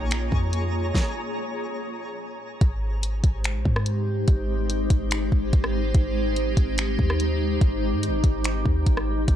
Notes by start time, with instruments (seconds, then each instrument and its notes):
Already playing: 808-style bass A#1, ambient pad A#3 F4 G#4 C#5, synth texture G#4 C#5 A#5
0.11 finger snap, closed hi-hat
0.32 808-style bass F2, kick
0.53 closed hi-hat
0.95 kick, snare
2.61 808-style bass G#1, ambient pad G#3 D#4 G4 C5, kick, closed hi-hat
3.03 closed hi-hat
3.24 808-style bass G#1, kick, closed hi-hat
3.44 finger snap, closed hi-hat
3.55 808-style bass A#1
3.65 808-style bass G#2, kick
3.76 cross-stick
3.86 closed hi-hat
4.28 808-style bass G#1, kick, closed hi-hat
4.70 closed hi-hat
4.90 808-style bass G#1, kick, closed hi-hat
5.11 finger snap, closed hi-hat
5.32 808-style bass G#1, kick
5.53 808-style bass G#1, kick, closed hi-hat
5.64 cross-stick
5.95 808-style bass G#1, kick, closed hi-hat
6.36 closed hi-hat
6.57 808-style bass G#1, kick, closed hi-hat
6.78 finger snap, closed hi-hat
6.99 808-style bass D#2, kick
7.10 cross-stick
7.20 closed hi-hat
7.61 808-style bass G#1, kick, closed hi-hat
7.93 808-style bass G#2
8.03 closed hi-hat
8.08 808-style bass G#1
8.24 808-style bass G#1, kick, closed hi-hat
8.44 finger snap, closed hi-hat
8.66 808-style bass D#2, kick
8.86 808-style bass G#1, kick, closed hi-hat
8.97 cross-stick
9.28 808-style bass D#1, kick, closed hi-hat